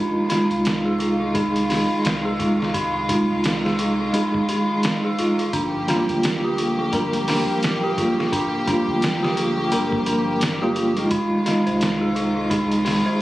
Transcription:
Already playing: sub bass F1, string section D#3 G#3 F4, tine electric piano G#3 D#4 F4, synth bell D#4
0.29 tine electric piano G#3 D#4 F4, synth bell D#4, snare, closed hi-hat
0.50 sub bass C2, closed hi-hat
0.65 snare, closed hi-hat
0.85 synth bell G#4
0.99 synth bell F4, closed hi-hat
1.20 synth bell F4
1.34 tine electric piano G#3 D#4 G#4, synth bell D#4, kick, closed hi-hat
1.56 closed hi-hat
1.70 synth bell D#4, snare, open hi-hat
2.05 sub bass C2, snare, closed hi-hat
2.25 synth bell G#4
2.39 tine electric piano G#3 D#4 F4, synth bell F4, kick, closed hi-hat
2.60 synth bell F4, snare
2.74 synth bell D#4, kick, closed hi-hat
3.08 tine electric piano G#3 D#4 F4, synth bell D#4, kick, closed hi-hat
3.30 sub bass C2
3.44 snare, closed hi-hat
3.65 synth bell G#4, snare
3.79 synth bell F4, closed hi-hat
4.00 synth bell F4
4.13 tine electric piano G#3 D#4 G#4, synth bell D#4, closed hi-hat
4.34 kick
4.49 synth bell D#4, closed hi-hat
4.83 snare, closed hi-hat
5.05 synth bell G#4
5.18 sub bass D#1, tine electric piano G#3 D#4 F4, synth bell F4, closed hi-hat
5.39 sub bass F1, synth bell F4, closed hi-hat
5.53 sub bass G1, string section F3 A#3 G4, synth bell D4, kick, closed hi-hat
5.87 tine electric piano G3 A#3 F4, synth bell D4, snare, closed hi-hat
6.09 sub bass D2, closed hi-hat
6.23 snare, closed hi-hat
6.44 synth bell G4
6.58 synth bell F4, closed hi-hat
6.79 synth bell F4
6.92 tine electric piano G3 A#3 A#4, synth bell D4, kick, closed hi-hat
7.13 closed hi-hat
7.28 synth bell D4, snare, open hi-hat
7.62 sub bass D1, snare, closed hi-hat
7.83 synth bell G4
7.97 tine electric piano G3 A#3 F4, synth bell F4, kick, closed hi-hat
8.18 synth bell F4, snare
8.32 synth bell D4, kick, closed hi-hat
8.67 tine electric piano G3 A#3 F4, synth bell D4, kick, closed hi-hat
8.88 sub bass D2
9.02 snare, closed hi-hat
9.23 synth bell G4, snare
9.37 synth bell F4, closed hi-hat
9.58 synth bell F4
9.71 sub bass G1, tine electric piano G3 A#3 A#4, synth bell D4, closed hi-hat
9.92 kick
10.06 synth bell D4, closed hi-hat
10.41 snare, closed hi-hat
10.62 tine electric piano G3 A#3 F4, synth bell G4
10.76 synth bell F4, closed hi-hat
10.97 tine electric piano G#3 D#4 F4, synth bell F4, closed hi-hat
11.10 sub bass F1, string section D#3 G#3 F4, synth bell D#4, kick, closed hi-hat
11.46 tine electric piano G#3 D#4 F4, synth bell D#4, snare, closed hi-hat
11.66 sub bass C2, synth bell C5, closed hi-hat
11.81 snare, closed hi-hat
12.01 synth bell G#4
12.15 synth bell F4, closed hi-hat
12.36 synth bell F4
12.50 tine electric piano G#3 D#4 G#4, synth bell D#4, kick, closed hi-hat
12.72 closed hi-hat
12.85 synth bell D#4, snare, open hi-hat
13.06 synth bell C5

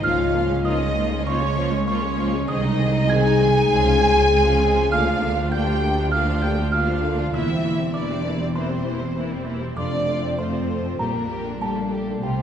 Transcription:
Already playing: harp G#4
0.03 double bass section C#2, cello section C#2, harp C#3, viola section F3 A#3, french horn section F4, violin section F4 F5, music box F6
0.18 viola section G#3, violin section C#4
0.23 harp G#3
0.33 viola section F3 A#3, violin section F4
0.44 harp A#3
0.48 viola section G#3, violin section C#4
0.64 viola section F3 A#3, harp C#4, french horn section D#4, violin section F4 D#5, music box D#6
0.80 viola section G#3, violin section C#4
0.85 harp G#4
0.95 viola section F3 A#3, violin section F4
1.05 harp C#4
1.11 viola section G#3, violin section C#4
1.19 violin section D#5
1.25 harp C#3, viola section F3 A#3, french horn section C#4, violin section F4 C#5, music box C#6
1.41 viola section G#3, violin section C#4
1.46 harp G#3
1.57 viola section F3 A#3, violin section F4
1.66 harp A#3
1.73 viola section G#3, violin section C#4
1.86 viola section F3 A#3, harp C#4, french horn section C#4, violin section F4 C#5, music box C#6
2.03 viola section G#3, violin section C#4, harp G#4
2.18 viola section F3 A#3, violin section F4
2.27 harp C#4
2.34 viola section G#3, violin section C#4
2.47 double bass section C2, cello section C2, harp C3, viola section D#3 C4, french horn section D#4, violin section G#4 D#5, music box D#6
2.64 viola section G#3 D#4, harp G#3, violin section D#4
2.79 viola section D#3 C4, violin section G#4
2.88 harp C4
2.94 viola section G#3 D#4, violin section D#4
3.08 viola section D#3 C4, harp D#4, french horn section G#4, violin section G#4 G#5, music box G#6
3.24 viola section G#3 D#4, violin section D#4
3.29 harp G#4
3.40 viola section D#3 C4, violin section G#4
3.49 harp D#4
3.55 viola section G#3 D#4, violin section D#4
3.69 double bass section C#2, cello section C#2, harp C#3, viola section G#3 C4, violin section G#4
3.85 viola section F3 C#4, violin section F4
3.89 harp G#3
4.00 viola section G#3 C4, violin section G#4
4.10 harp C4
4.16 viola section F3 C#4, violin section F4
4.30 viola section G#3 C4, harp F4, violin section G#4
4.45 viola section F3 C#4, violin section F4
4.61 viola section G#3 C4, violin section G#4
4.70 harp F4
4.76 viola section F3 C#4, violin section F4
4.90 cello section D2, double bass section D2, harp D3, viola section D3 A#3, violin section D4 F5, french horn section F4, music box F6
5.06 viola section F3 D4, violin section F4
5.21 viola section D3 A#3, violin section D4
5.31 harp A#3
5.37 viola section F3 D4, violin section F4
5.51 viola section D3 A#3, violin section D4 G5, harp F4, french horn section G4, music box G6
5.67 viola section F3 D4, violin section F4
5.71 harp A#4
5.82 viola section D3 A#3, violin section D4
5.91 harp F4
5.97 viola section F3 D4, violin section F4
6.11 harp D3, viola section D3 A#3, violin section D4 F5, french horn section F4, music box F6
6.28 viola section F3 D4, violin section F4
6.32 harp D4
6.42 viola section D3 A#3, violin section D4 G5, french horn section G4, music box G6
6.52 harp A#3
6.58 viola section F3 D4, violin section F4
6.72 viola section D3 A#3, violin section D4 F5, harp F4, french horn section F4, music box F6
6.88 viola section F3 D4, violin section F4
6.92 harp A#4
7.03 viola section D3 A#3, violin section D4
7.12 harp F4
7.18 viola section F3 D4, violin section F4
7.33 double bass section E1, cello section E2, harp E3, viola section E3 A#3, violin section E4 E5, french horn section E4, music box E6
7.49 viola section G3 C4, violin section C4
7.53 harp E4
7.64 viola section E3 A#3, violin section E4
7.74 harp A#3
7.79 viola section G3 C4, violin section C4
7.94 viola section E3 A#3, french horn section D4, violin section E4 D5, harp G4, music box D6
8.09 viola section G3 C4, violin section C4
8.14 harp C5
8.24 viola section E3 A#3, violin section E4
8.35 harp G4
8.39 viola section G3 C4, violin section C4
8.55 harp E3, viola section E3 A#3, french horn section C4, violin section E4 C5, music box C6
8.70 viola section G3 C4, violin section C4
8.75 harp E4
8.86 viola section E3 A#3, violin section E4
8.95 harp A#3
9.01 viola section G3 C4, violin section C4
9.15 viola section E3 A#3, violin section E4, harp G4
9.31 viola section G3 C4, violin section C4
9.36 harp C5
9.46 viola section E3 A#3, violin section E4
9.56 harp G4
9.61 viola section G3 C4, violin section C4
9.76 double bass section F1, cello section F2, harp F3, viola section A3, french horn section D4, violin section F4 D5, music box D6
9.92 viola section F3 C4, violin section C4
9.97 harp A3
10.07 viola section A3, violin section F4
10.17 harp F4
10.23 viola section F3 C4, violin section C4
10.38 viola section A3, french horn section C4, violin section F4 C5, harp C5, music box C6
10.53 viola section F3 C4, violin section C4
10.58 harp A4
10.68 viola section A3, violin section F4
10.79 harp C5
10.84 viola section F3 C4, violin section C4
10.98 double bass section A#1, cello section A#2, harp A#2, viola section G3, french horn section A#3, violin section G4 A#4, music box A#5
11.06 violin section C5
11.13 viola section D3 A#3, violin section D4 A#4
11.19 harp A#3
11.29 viola section G3, violin section G4
11.39 harp G3
11.45 viola section D3 A#3, violin section D4
11.60 viola section G3, french horn section A3, harp D4, violin section G4 A4, music box A5
11.76 viola section D3 A#3, violin section D4
11.81 harp D5
11.91 viola section G3, violin section G4
12.02 harp D4
12.07 viola section D3 A#3, violin section D4
12.22 double bass section C2, harp C3, cello section C3, french horn section G3, viola section G3, violin section F4 G4, music box G5
12.38 viola section F3, violin section C4

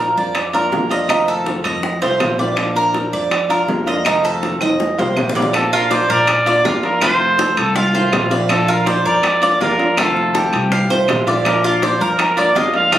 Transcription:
Already playing: upright bass A#1, nylon-string guitar F3 A#3 D4 F4, cuban tres A#4
0.17 upright bass F2, cuban tres D5
0.35 muted nylon-string guitar stroke, high bongo, high timbale, claves
0.53 nylon-string guitar A#3 D4 F4, cuban tres A#4, high bongo, high timbale
0.71 upright bass F2, nylon-string guitar F3 A#3 D4 F4, high bongo, low bongo, low timbale
0.89 nylon-string guitar A#3 D4 F4, cuban tres D#5, high bongo, high timbale
1.08 nylon-string guitar C3 D#3 A3 C4 F4, cuban tres D#4, high bongo, high timbale, claves
1.28 cuban tres A4, high bongo
1.46 high bongo, high timbale, low timbale
1.64 upright bass F2, cuban tres D#5, high timbale, claves
1.83 muted nylon-string guitar stroke, high bongo
2.02 upright bass C2, nylon-string guitar D#3 A3 C4 F4, cuban tres C5, high bongo, high timbale
2.20 upright bass A#1, nylon-string guitar D#3 A3 C4 F4, high bongo, low bongo, high timbale, low timbale, claves
2.38 nylon-string guitar D#3 A3 C4 F4, cuban tres D5, high bongo
2.57 nylon-string guitar F3 A#3 D4 F4, high bongo, high timbale, claves
2.76 cuban tres A#4, high bongo
2.94 high bongo, high timbale, low timbale
3.13 upright bass F2, cuban tres D5
3.31 muted nylon-string guitar stroke, high bongo, high timbale, claves
3.49 nylon-string guitar A#3 D4 F4, cuban tres A#4, high bongo, high timbale
3.68 upright bass F2, nylon-string guitar F3 A#3 D4 F4, high bongo, low bongo, low timbale
3.86 nylon-string guitar A#3 D4 F4, cuban tres D#5, high bongo, high timbale
4.05 nylon-string guitar C3 D#3 A3 C4 F4, cuban tres D#4, high bongo, high timbale, claves
4.24 cuban tres A4, high bongo
4.43 high bongo, high timbale, low timbale
4.61 upright bass F2, cuban tres D#5, high timbale, claves
4.80 muted nylon-string guitar stroke, high bongo
4.98 upright bass C2, nylon-string guitar D#3 A3 C4 F4, cuban tres C5, low timbale
5.17 upright bass A#1, nylon-string guitar D#3 A3 C4 F4, low bongo, low timbale, claves
5.29 low bongo
5.35 nylon-string guitar D#3 A3 C4 F4, cuban tres D5, low timbale
5.42 low bongo
5.53 nylon-string guitar F3 A#3 D4 F4, trumpet A4, high bongo, high timbale, claves
5.72 cuban tres F4, trumpet A#4, high bongo
5.91 trumpet C5, cuban tres D5, high bongo, high timbale, low timbale
6.09 upright bass A#2, cuban tres A#4, trumpet D5
6.27 muted nylon-string guitar stroke, high bongo, high timbale, claves
6.46 nylon-string guitar A#3 D4 F4, cuban tres D5, high bongo, high timbale
6.65 upright bass F2, nylon-string guitar F3 A#3 D4 F4, cuban tres F4, high bongo, low bongo, low timbale
6.83 nylon-string guitar A#3 D4 F4, trumpet A#4, high bongo, high timbale
7.01 nylon-string guitar C3 D#3 A3 C4 F4, cuban tres F4, trumpet C5, high bongo, high timbale, claves
7.20 high bongo
7.39 cuban tres A4, high bongo, high timbale, low timbale
7.57 upright bass C2, trumpet A4, high timbale, claves
7.75 trumpet F4, cuban tres F5, muted nylon-string guitar stroke, high bongo
7.93 nylon-string guitar D#3 A3 C4 F4, cuban tres C5, high bongo
8.12 upright bass A#1, nylon-string guitar D#3 C4 F4, high bongo, low bongo, high timbale, low timbale, claves
8.30 nylon-string guitar D#3 A3 C4 F4, cuban tres D5, high bongo, high timbale
8.48 nylon-string guitar F3 A#3 D4 F4, trumpet A4, high bongo, high timbale, claves
8.68 cuban tres F4, trumpet A#4, high bongo
8.86 trumpet C5, cuban tres D5, high bongo, high timbale, low timbale
9.05 upright bass F2, cuban tres A#4, trumpet D5
9.23 muted nylon-string guitar stroke, high bongo, high timbale, claves
9.41 nylon-string guitar A#3 D4 F4, cuban tres D5, high bongo, high timbale
9.60 upright bass F2, nylon-string guitar F3 A#3 D4 F4, cuban tres F4, trumpet A#4, high bongo, low bongo, low timbale
9.78 nylon-string guitar A#3 D4 F4, high bongo, high timbale
9.97 nylon-string guitar C3 D#3 A3 C4 F4, cuban tres F4, trumpet A4, high bongo, high timbale, claves
10.17 high bongo
10.35 trumpet G4, cuban tres A4, high bongo, high timbale, low timbale
10.53 upright bass C2, high timbale, claves
10.71 cuban tres F5, muted nylon-string guitar stroke, high bongo
10.89 upright bass C2, nylon-string guitar D#3 A3 C4 F4, cuban tres C5, high bongo
11.08 upright bass A#1, nylon-string guitar D#3 A3 C4 F4, high bongo, low bongo, high timbale, low timbale, claves
11.27 nylon-string guitar D#3 A3 C4 F4, cuban tres D5, high bongo, high timbale
11.45 nylon-string guitar F3 A#3 D4 F4, trumpet A#4, high bongo, high timbale, claves
11.64 cuban tres F4, trumpet D5, high bongo
11.82 trumpet C5, cuban tres D5, high bongo, high timbale, low timbale
12.01 upright bass F2, cuban tres A#4, trumpet A#4
12.19 trumpet A#4, muted nylon-string guitar stroke, high bongo, high timbale, claves
12.37 nylon-string guitar A#3 D4 F4, cuban tres D5, trumpet D5, high bongo, high timbale
12.55 upright bass F2, nylon-string guitar F3 A#3 D4 F4, cuban tres F4, trumpet D#5, high bongo, low bongo, low timbale
12.74 nylon-string guitar A#3 D4 F4, trumpet F5, high bongo, high timbale
12.92 nylon-string guitar C3 D#3 A3 C4 F4, cuban tres F4, high bongo, high timbale, claves

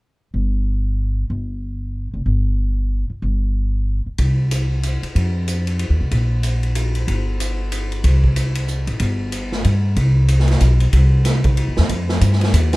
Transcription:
0.34 upright bass G1
1.30 upright bass G1
2.14 upright bass F1
2.26 upright bass G1
3.10 muted upright bass stroke
3.22 upright bass G1
4.06 muted upright bass stroke
4.18 upright bass C2, kick, ride
4.51 hi-hat pedal, ride
4.83 hi-hat pedal, ride
5.03 muted upright bass stroke, ride
5.15 upright bass F2, kick, ride
5.48 hi-hat pedal, ride
5.67 ride
5.79 ride
5.90 upright bass D#2
6.01 upright bass C2
6.11 upright bass A#1, kick, ride
6.43 hi-hat pedal, ride
6.63 ride
6.75 hi-hat pedal, ride
6.95 ride
7.07 upright bass G1, kick, ride
7.40 hi-hat pedal, ride
7.72 hi-hat pedal, ride
7.92 ride
8.04 upright bass C2, kick, ride
8.24 kick
8.36 hi-hat pedal, ride
8.55 ride
8.68 hi-hat pedal
8.87 upright bass G#1, ride
9.00 upright bass G1, kick, ride
9.32 hi-hat pedal, ride
9.52 snare
9.64 upright bass G2, ride
9.96 upright bass C2, kick, ride
10.28 hi-hat pedal, ride
10.40 snare
10.48 snare, ride
10.60 upright bass B1, hi-hat pedal, ride
10.80 ride
10.93 upright bass C2, kick, ride
11.25 snare, hi-hat pedal, ride
11.44 kick, ride
11.57 ride
11.68 upright bass D#2
11.77 upright bass E2, snare
11.89 upright bass F2, kick, ride
12.09 snare
12.21 upright bass G2, kick, hi-hat pedal, ride
12.33 snare
12.41 snare, ride
12.53 upright bass D#2, kick, hi-hat pedal, ride
12.73 snare, ride

